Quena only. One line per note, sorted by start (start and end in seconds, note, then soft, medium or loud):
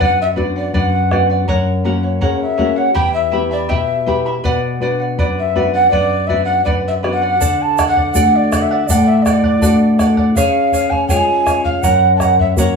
0.02 0.18 F#5 loud
0.21 0.30 E5 medium
0.58 0.74 D5 medium
0.75 1.26 F#5 medium
2.22 2.40 C#5 medium
2.42 2.79 E5 medium
2.77 2.93 F#5 medium
2.94 3.13 G5 loud
3.14 3.49 E5 medium
3.52 3.71 D5 medium
3.70 4.26 E5 medium
5.19 5.25 D5 medium
5.39 5.73 E5 medium
5.74 5.90 F#5 medium
5.90 6.28 D5 medium
6.27 6.44 E5 medium
6.45 6.63 F#5 medium
6.65 6.71 D5 medium
6.88 6.94 E5 medium
7.12 7.63 F#5 medium
7.62 7.87 A5 medium
7.88 8.11 F#5 medium
8.12 8.37 F#5 medium
8.36 8.63 D5 medium
8.61 8.88 E5 medium
8.87 9.05 D5 medium
9.06 9.24 E5 medium
9.22 9.97 D5 medium
10.35 10.92 F5 medium
10.90 11.08 G#5 medium
11.08 11.60 G#5 medium
11.64 11.83 F5 medium
11.82 12.15 F#5 medium
12.16 12.23 A5 medium
12.21 12.39 F#5 loud
12.40 12.56 E5 medium
12.58 12.76 C#5 medium